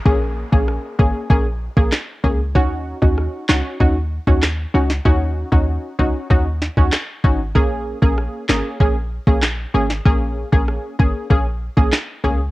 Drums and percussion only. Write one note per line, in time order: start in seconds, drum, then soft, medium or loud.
0.05 kick loud
0.52 kick medium
0.68 cross-stick medium
0.99 kick medium
1.30 kick loud
1.77 kick loud
1.93 cross-stick medium
1.93 snare loud
1.93 clap medium
2.24 kick medium
2.55 kick loud
3.02 kick medium
3.18 cross-stick medium
3.49 snare loud
3.49 clap medium
3.80 kick loud
4.27 kick medium
4.43 cross-stick medium
4.43 snare loud
4.43 clap medium
4.90 snare medium
5.05 kick loud
5.52 kick medium
5.99 kick medium
6.30 kick loud
6.62 snare medium
6.77 kick medium
6.93 cross-stick medium
6.93 snare loud
6.93 clap medium
7.24 kick medium
7.55 kick loud
8.02 kick medium
8.18 cross-stick medium
8.49 snare loud
8.49 clap medium
8.80 kick medium
9.27 kick loud
9.43 cross-stick medium
9.43 snare loud
9.43 clap medium
9.90 snare medium
10.05 kick loud
10.52 kick medium
10.68 cross-stick medium
10.99 kick medium
11.30 kick loud
11.77 kick loud
11.93 cross-stick loud
11.93 snare loud
11.93 clap medium
12.24 kick medium